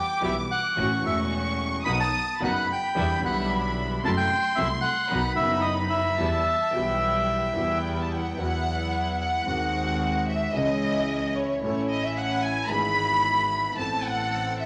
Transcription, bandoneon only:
0.00 0.22 G5 medium
0.25 0.36 E5 medium
0.51 1.01 F#5 medium
1.06 1.18 E5 medium
1.85 1.91 B5 medium
2.00 2.42 A5 medium
2.44 2.68 F#5 medium
2.72 3.21 G5 medium
3.25 3.49 F#5 medium
4.05 4.11 A5 medium
4.17 4.59 G5 medium
4.56 4.68 E5 medium
4.81 5.33 F#5 medium
5.36 5.65 E5 medium
5.61 5.74 D#5 medium
5.90 7.78 E5 medium

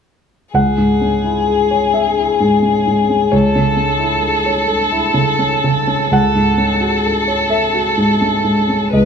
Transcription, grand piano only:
0.54 3.28 C#2 soft
0.54 1.90 F#5 medium
0.78 1.15 G#2 soft
1.01 1.39 C#4 soft
1.24 1.62 E4 soft
1.48 1.85 G#4 soft
1.71 2.08 C#5 soft
1.94 2.31 G#4 soft
1.94 3.28 E5 soft
2.18 2.55 E4 soft
2.40 2.77 G#2 soft
2.62 3.00 C#4 soft
2.87 3.24 G#2 soft
3.09 3.32 C#4 soft
3.32 6.08 C#2 soft
3.32 4.45 C#5 medium
3.55 3.92 C#3 soft
3.77 4.14 C#4 soft
4.00 4.37 E4 soft
4.23 4.59 A4 soft
4.46 4.83 C#5 soft
4.68 5.06 A4 soft
4.92 5.30 E4 soft
5.14 5.54 C#3 soft
5.39 5.78 C#4 soft
5.64 6.03 C#3 soft
5.87 6.12 C#4 soft
6.11 8.88 C#2 soft
6.11 7.47 F#5 medium
6.35 6.72 G#2 soft
6.58 6.95 C#4 soft
6.81 7.18 F#4 soft
7.04 7.41 A4 soft
7.28 7.65 C#5 soft
7.49 7.87 A4 soft
7.49 8.89 E5 medium
7.74 8.12 F#4 soft
7.97 8.35 G#2 soft
8.21 8.60 C#4 soft
8.44 8.83 G#2 soft
8.69 8.93 C#4 soft
8.93 9.05 C#2 soft
8.93 9.05 D#5 soft

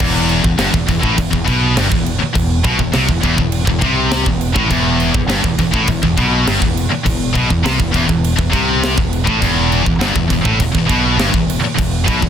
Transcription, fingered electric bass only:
0.01 0.41 E1 medium
0.44 0.57 E1 medium
0.58 0.72 G1 loud
0.74 0.87 E1 medium
0.88 1.02 E1 medium
1.03 1.17 A1 loud
1.18 1.31 E1 medium
1.33 1.46 E1 medium
1.48 1.75 B1 loud
1.76 1.90 G1 medium
1.92 2.19 E1 medium
2.22 muted fingered electric bass stroke soft
2.35 2.62 E1 medium
2.64 2.78 B1 loud
2.79 2.92 E1 medium
2.95 3.08 C2 loud
3.09 3.22 E1 medium
3.24 3.37 E1 medium
3.37 3.65 E1 medium
3.67 3.81 E1 medium
3.82 4.23 C2 medium
4.26 4.53 E1 medium
4.55 4.69 A1 loud
4.71 5.11 E1 medium
5.14 5.25 E1 medium
5.26 5.41 G1 loud
5.44 5.57 E1 medium
5.59 5.72 E1 medium
5.74 5.87 A1 loud
5.88 6.01 E1 medium
6.03 6.16 E1 medium
6.17 6.44 B1 loud
6.46 6.60 G1 medium
6.61 6.89 E1 medium
6.90 muted fingered electric bass stroke soft
7.05 7.33 E1 medium
7.35 7.48 B1 medium
7.51 7.63 E1 medium
7.64 7.78 C2 loud
7.79 7.92 E1 medium
7.94 8.07 E1 medium
8.09 8.36 E1 medium
8.38 8.52 E1 medium
8.53 8.94 C2 loud
8.98 9.25 E1 medium
9.28 9.41 A1 loud
9.42 9.82 E1 medium
9.85 9.98 E1 medium
9.99 10.13 G1 medium
10.16 10.29 E1 medium
10.31 10.44 E1 medium
10.44 10.58 A1 loud
10.60 10.73 E1 medium
10.75 10.88 E1 medium
10.90 11.16 B1 medium
11.17 11.31 G1 medium
11.33 11.60 E1 medium
11.62 muted fingered electric bass stroke soft
11.78 12.05 E1 medium
12.08 12.21 B1 medium
12.22 12.29 E1 medium

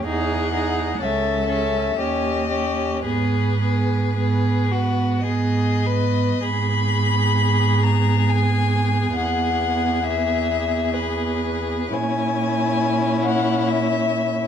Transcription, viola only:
0.06 0.53 D#4 soft
0.54 1.00 D#4 soft
1.01 1.48 C#4 soft
1.49 1.97 C#4 soft
1.98 2.49 C#4 soft
2.50 3.03 C#4 soft
3.05 3.60 B3 soft
3.61 4.15 B3 soft
4.16 4.70 B3 soft
4.71 5.25 B3 soft
5.26 5.84 B3 soft
5.86 6.42 B3 soft
6.43 11.88 B3 soft
11.92 14.47 C#4 soft

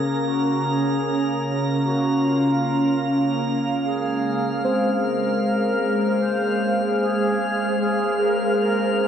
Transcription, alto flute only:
0.00 0.29 G#4 medium
0.28 0.67 F#4 medium
0.66 1.58 G#4 medium
1.84 2.27 F#4 medium
2.25 3.45 F4 medium
3.86 4.61 G#4 medium
4.65 5.05 G#4 medium
5.04 5.43 A#4 medium
5.45 6.23 A#4 medium
6.22 6.81 C5 medium
7.02 7.76 G#4 loud
7.80 8.21 G#4 medium
8.19 8.59 A#4 medium
8.59 9.07 A#4 medium

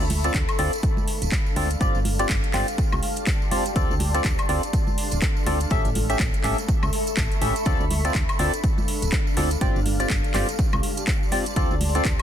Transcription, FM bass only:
0.00 0.30 D2 loud
0.34 0.45 D2 medium
0.59 0.69 D2 loud
1.22 1.29 D1 medium
1.56 1.75 D2 medium
1.81 1.91 G1 loud
1.95 2.25 G1 loud
2.29 2.40 G1 medium
2.54 2.64 G1 medium
2.93 3.00 C2 medium
3.76 3.86 D2 loud
3.90 4.20 D2 loud
4.25 4.35 D2 medium
4.49 4.59 D2 medium
5.12 5.20 D1 medium
5.46 5.66 D2 medium
5.71 5.82 A1 loud
5.85 6.15 A1 loud
6.20 6.30 A1 medium
6.44 6.55 A1 loud
6.83 6.90 C#2 medium
7.17 7.28 A1 medium
7.42 7.52 A1 loud
7.66 7.77 D2 loud
7.80 8.11 D2 loud
8.15 8.25 D2 medium
8.39 8.50 D2 loud
9.02 9.10 D1 medium
9.37 9.56 D2 medium
9.61 9.72 G1 loud
9.76 10.06 G1 loud
10.10 10.21 G1 medium
10.34 10.45 G1 medium
10.73 10.81 C2 medium
11.56 11.67 D2 loud
11.71 12.01 D2 loud
12.05 12.16 D2 medium

